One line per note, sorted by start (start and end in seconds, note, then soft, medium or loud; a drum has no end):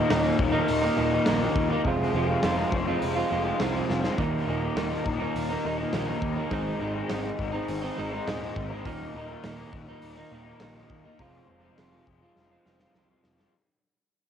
0.00 0.11 A#3 medium
0.00 0.12 D#4 medium
0.08 0.30 D#1 medium
0.08 0.53 D#2 medium
0.08 0.37 A#2 medium
0.08 0.25 D#3 loud
0.08 0.23 A#3 loud
0.08 0.22 D#4 loud
0.08 snare loud
0.08 open hi-hat medium
0.23 0.37 D#3 medium
0.23 0.38 A#3 medium
0.23 0.37 D#4 medium
0.38 0.58 D#1 medium
0.38 0.83 A#2 medium
0.38 0.57 D#3 medium
0.38 0.55 A#3 medium
0.38 muted clean electric guitar stroke soft
0.38 kick medium
0.43 0.53 D#4 medium
0.52 0.83 D#3 medium
0.52 0.82 A#3 medium
0.52 0.80 D#4 medium
0.68 0.88 D#1 medium
0.68 open hi-hat medium
0.81 0.96 D#3 soft
0.81 0.96 A#3 medium
0.81 0.97 D#4 medium
0.95 1.17 D#1 loud
0.95 1.25 A#2 medium
0.95 1.13 D#3 medium
0.95 1.11 A#3 medium
0.95 1.10 D#4 medium
1.11 1.26 D#3 medium
1.11 1.27 A#3 medium
1.11 1.28 D#4 medium
1.26 1.46 A#1 medium
1.26 1.70 D#2 medium
1.26 1.70 A#2 medium
1.26 1.43 D#3 loud
1.26 1.42 A#3 loud
1.26 1.40 D#4 loud
1.26 snare loud
1.26 open hi-hat soft
1.41 1.73 D#3 medium
1.41 1.71 A#3 medium
1.41 1.69 D#4 medium
1.55 1.75 D#2 loud
1.55 kick medium
1.71 1.85 D#3 medium
1.71 1.84 A#3 medium
1.71 1.83 D#4 medium
1.85 2.04 F1 medium
1.85 2.41 F2 medium
1.85 2.42 C3 loud
1.85 2.13 F3 loud
1.85 2.14 G#3 loud
1.85 2.15 C4 loud
1.85 2.17 F4 loud
1.85 kick loud
1.85 open hi-hat soft
2.14 2.34 F1 medium
2.14 2.43 F3 medium
2.14 2.43 G#3 medium
2.14 2.44 C4 medium
2.14 2.45 F4 medium
2.28 2.44 F3 medium
2.28 2.44 G#3 medium
2.28 2.44 C4 medium
2.28 2.46 F4 medium
2.42 2.63 F1 medium
2.42 2.86 F2 medium
2.42 2.87 C3 medium
2.42 2.60 F3 medium
2.42 2.58 G#3 medium
2.42 2.57 C4 medium
2.42 2.57 F4 medium
2.42 snare loud
2.42 open hi-hat soft
2.57 2.72 F3 medium
2.57 2.71 G#3 medium
2.57 2.72 C4 medium
2.57 2.73 F4 medium
2.71 2.92 F1 medium
2.71 2.88 F3 medium
2.71 2.87 G#3 medium
2.71 2.86 C4 medium
2.71 2.84 F4 medium
2.71 muted clean electric guitar stroke soft
2.71 kick medium
2.88 3.18 F3 medium
2.88 3.18 G#3 medium
2.88 3.16 C4 medium
2.88 3.15 F4 medium
3.02 3.21 F1 medium
3.02 open hi-hat medium
3.16 3.29 F3 medium
3.16 3.30 G#3 medium
3.16 3.31 C4 medium
3.16 3.32 F4 medium
3.30 3.51 F1 medium
3.30 3.47 F3 medium
3.30 3.46 G#3 medium
3.30 3.45 C4 medium
3.30 3.44 F4 medium
3.45 3.60 F3 medium
3.45 3.60 G#3 medium
3.45 3.61 C4 medium
3.45 3.61 F4 medium
3.59 3.80 C2 medium
3.59 4.03 F2 medium
3.59 4.04 C3 medium
3.59 3.76 F3 medium
3.59 3.75 G#3 medium
3.59 3.74 C4 medium
3.59 3.73 F4 medium
3.59 snare loud
3.59 open hi-hat soft
3.74 4.04 F3 medium
3.74 4.03 G#3 medium
3.74 4.03 C4 medium
3.74 4.01 F4 medium
3.90 4.09 F1 medium
3.90 snare medium
4.02 4.17 F3 medium
4.02 4.17 G#3 medium
4.02 4.17 C4 medium
4.02 4.16 F4 medium
4.02 snare medium
4.17 4.37 D#1 medium
4.17 4.74 D#2 medium
4.17 4.46 A#2 medium
4.17 4.46 D#3 loud
4.17 4.47 A#3 medium
4.17 4.50 D#4 medium
4.17 kick medium
4.17 open hi-hat soft
4.47 4.67 D#1 medium
4.47 4.76 A#2 medium
4.47 4.76 D#3 medium
4.47 4.77 A#3 medium
4.47 4.78 D#4 medium
4.61 4.76 D#3 medium
4.61 4.77 A#3 medium
4.61 4.78 D#4 medium
4.76 4.96 D#1 medium
4.76 5.20 D#2 medium
4.76 5.05 A#2 medium
4.76 4.92 D#3 medium
4.76 4.90 A#3 medium
4.76 4.89 D#4 medium
4.76 snare loud
4.76 open hi-hat soft
4.90 5.06 D#3 medium
4.90 5.05 A#3 medium
4.90 5.07 D#4 medium
5.04 5.25 D#1 medium
5.04 5.49 A#2 medium
5.04 5.22 D#3 medium
5.04 5.21 A#3 medium
5.04 5.19 D#4 medium
5.04 muted clean electric guitar stroke soft
5.04 kick medium
5.20 5.51 D#3 medium
5.20 5.50 A#3 medium
5.20 5.49 D#4 medium
5.36 5.55 D#1 medium
5.36 open hi-hat medium
5.49 5.64 D#3 medium
5.49 5.65 A#3 medium
5.49 5.67 D#4 medium
5.64 5.84 D#1 medium
5.64 5.92 A#2 medium
5.64 5.81 D#3 medium
5.64 5.79 A#3 medium
5.64 5.78 D#4 medium
5.78 5.93 D#3 soft
5.78 5.93 A#3 medium
5.78 5.96 D#4 medium
5.93 6.13 A#1 medium
5.93 6.37 D#2 medium
5.93 6.37 A#2 medium
5.93 6.10 D#3 medium
5.93 6.09 A#3 medium
5.93 6.08 D#4 loud
5.93 snare medium
5.93 open hi-hat soft
6.08 6.38 D#3 medium
6.08 6.37 A#3 medium
6.08 6.36 D#4 medium
6.22 6.41 D#2 medium
6.22 kick medium
6.36 6.50 D#3 medium
6.36 6.50 A#3 medium
6.36 6.53 D#4 medium
6.50 6.71 G#1 medium
6.50 7.07 G#2 medium
6.50 6.78 D#3 loud
6.50 6.79 G#3 loud
6.50 6.80 C4 loud
6.50 6.82 D#4 loud
6.50 kick medium
6.50 open hi-hat soft
6.80 7.01 G#1 medium
6.80 7.08 D#3 medium
6.80 7.08 G#3 medium
6.80 7.09 C4 medium
6.80 7.10 D#4 medium
6.94 7.10 G#3 medium
6.94 7.11 C4 medium
6.94 7.13 D#4 medium
7.08 7.30 G#1 medium
7.08 7.53 G#2 medium
7.08 7.37 D#3 medium
7.08 7.25 G#3 loud
7.08 7.24 C4 medium
7.08 7.23 D#4 medium
7.08 snare loud
7.08 open hi-hat soft
7.23 7.37 G#3 medium
7.23 7.37 C4 medium
7.23 7.39 D#4 medium
7.38 7.58 G#1 medium
7.38 7.83 D#3 medium
7.38 7.55 G#3 medium
7.38 7.54 C4 medium
7.38 muted clean electric guitar stroke soft
7.38 kick medium
7.43 7.52 D#4 medium
7.52 7.84 G#3 medium
7.52 7.83 C4 medium
7.52 7.81 D#4 medium
7.68 7.88 G#1 medium
7.68 open hi-hat medium
7.82 7.96 G#3 medium
7.82 7.97 C4 medium
7.82 7.98 D#4 medium
7.96 8.18 G#1 medium
7.96 8.27 D#3 medium
7.96 8.13 G#3 medium
7.96 8.12 C4 medium
7.96 8.10 D#4 medium
8.11 8.27 G#3 medium
8.11 8.28 C4 medium
8.11 8.28 D#4 medium
8.26 8.47 D#1 medium
8.26 8.71 G#2 medium
8.26 8.71 D#3 medium
8.26 8.43 G#3 loud
8.26 8.41 C4 medium
8.26 8.40 D#4 loud
8.26 snare loud
8.26 open hi-hat medium
8.41 8.72 G#3 medium
8.41 8.71 C4 medium
8.41 8.70 D#4 medium
8.56 8.86 G#1 medium
8.56 kick medium
8.71 8.85 G#3 medium
8.71 8.84 C4 medium
8.71 8.84 D#4 medium
8.84 9.05 D#1 medium
8.84 9.42 D#2 medium
8.84 9.13 A#2 medium
8.84 9.14 D#3 loud
8.84 9.15 A#3 loud
8.84 9.16 D#4 loud
8.84 kick loud
8.84 open hi-hat soft
9.14 9.34 D#1 medium
9.14 9.44 A#2 medium
9.14 9.44 D#3 medium
9.14 9.45 A#3 medium
9.14 9.46 D#4 medium
9.28 9.44 A#3 medium
9.28 9.45 D#4 medium
9.32 9.43 D#3 medium
9.44 9.63 D#1 medium
9.44 9.88 D#2 medium
9.44 9.72 A#2 medium
9.44 9.60 D#3 medium
9.44 9.59 A#3 medium
9.44 9.57 D#4 loud
9.44 snare loud
9.44 open hi-hat medium
9.58 9.73 D#3 medium
9.58 9.73 A#3 medium
9.58 9.74 D#4 medium
9.72 9.93 D#1 medium
9.72 10.17 A#2 medium
9.72 9.89 D#3 medium
9.72 9.88 A#3 medium
9.72 9.86 D#4 medium
9.72 muted clean electric guitar stroke soft
9.72 kick medium
9.89 10.19 D#3 medium
9.89 10.17 A#3 medium
9.89 10.16 D#4 medium
10.02 10.22 D#1 medium
10.02 open hi-hat medium
10.17 10.31 D#3 medium
10.17 10.32 A#3 medium
10.17 10.33 D#4 medium
10.31 10.51 D#1 medium
10.31 10.60 A#2 medium
10.31 10.48 D#3 medium
10.31 10.47 A#3 medium
10.31 10.45 D#4 medium
10.46 10.61 D#3 medium
10.46 10.62 A#3 medium
10.46 10.63 D#4 medium
10.60 10.81 A#1 medium
10.60 11.05 D#2 medium
10.60 11.05 A#2 medium
10.60 10.77 D#3 medium
10.60 10.76 A#3 medium
10.60 10.75 D#4 medium
10.60 snare medium
10.60 open hi-hat soft
10.76 11.07 D#3 medium
10.76 11.05 A#3 medium
10.76 11.04 D#4 medium
10.90 11.10 D#2 medium
10.90 kick medium
11.05 11.19 D#3 medium
11.05 11.19 A#3 medium
11.05 11.18 D#4 medium
11.19 11.39 F1 medium
11.19 11.76 F2 medium
11.19 11.77 C3 medium
11.19 11.46 F3 medium
11.19 11.47 G#3 medium
11.19 11.48 C4 loud
11.19 11.49 F4 loud
11.19 kick medium
11.19 open hi-hat soft
11.48 11.69 F1 medium
11.48 11.78 F3 medium
11.48 11.78 G#3 medium
11.48 11.79 C4 medium
11.48 11.79 F4 medium
11.62 11.77 F3 medium
11.62 11.78 G#3 medium
11.62 11.79 C4 medium
11.62 11.79 F4 medium
11.77 11.98 F1 medium
11.77 12.22 F2 medium
11.77 12.22 C3 medium
11.77 11.93 F3 medium
11.77 11.93 G#3 medium
11.77 11.91 C4 medium
11.77 11.90 F4 medium
11.77 snare medium
11.77 open hi-hat soft
11.92 12.06 F3 medium
11.92 12.07 G#3 medium
11.92 12.06 C4 medium
11.92 12.07 F4 medium
12.07 12.27 F1 medium
12.07 12.24 F3 medium
12.07 12.23 G#3 medium
12.07 12.22 C4 medium
12.07 12.20 F4 medium
12.07 muted clean electric guitar stroke soft
12.07 kick medium
12.22 12.53 F3 medium
12.22 12.53 G#3 medium
12.22 12.52 C4 medium
12.22 12.50 F4 medium
12.36 12.56 F1 medium
12.36 snare medium
12.52 12.65 F3 medium
12.52 12.66 G#3 medium
12.52 12.67 C4 medium
12.52 12.68 F4 medium
12.66 12.86 F1 medium
12.66 12.83 F3 medium
12.66 12.82 G#3 medium
12.66 12.81 C4 medium
12.66 12.80 F4 medium
12.66 snare medium
12.79 12.97 G#3 medium
12.79 12.97 C4 medium
12.79 12.98 F4 medium
12.79 snare medium
12.84 12.96 F3 soft
12.94 13.14 C2 medium
12.94 13.40 F2 medium
12.94 13.40 C3 medium
12.94 13.12 F3 medium
12.94 13.11 G#3 medium
12.94 snare medium
12.98 13.10 C4 loud
12.98 13.09 F4 loud
13.10 13.42 F3 medium
13.10 13.41 G#3 medium
13.10 13.40 C4 medium
13.10 13.38 F4 medium
13.24 13.44 F1 medium
13.24 snare medium
13.39 13.54 F3 medium
13.39 13.54 G#3 soft
13.39 13.53 C4 medium
13.39 13.52 F4 medium
13.39 snare medium